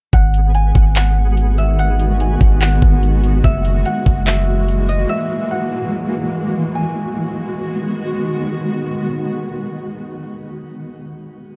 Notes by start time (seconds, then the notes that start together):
0.13 G#1 D#3 G#3 B3 F#4 G#4 F#5, kick, closed hi-hat
0.34 closed hi-hat
0.54 G#5, closed hi-hat
0.75 G#1, kick, closed hi-hat
0.96 F#5, clap, closed hi-hat
1.37 closed hi-hat
1.58 E5, closed hi-hat
1.79 F#5, closed hi-hat
2.00 closed hi-hat
2.20 G#5, closed hi-hat
2.41 G#1, kick, closed hi-hat
2.61 F#5, clap, closed hi-hat
2.82 G#1, kick
3.03 closed hi-hat
3.24 closed hi-hat
3.44 F#1 E3 A#3 E5, kick, closed hi-hat
3.65 closed hi-hat
3.85 F#5, closed hi-hat
4.06 F#1, kick, closed hi-hat
4.26 E5, clap, closed hi-hat
4.68 closed hi-hat
4.89 D#5, closed hi-hat
5.09 E5
5.51 F#5
6.75 D#3 G#3 B3 F#4 G#5